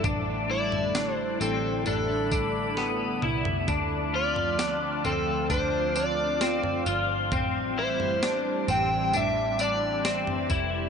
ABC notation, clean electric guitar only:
X:1
M:4/4
L:1/8
Q:1/4=66
K:Am
V:1 name="Clean electric guitar"
D E D C D D B, E | D F D C D D C F | C E D C D D C E |]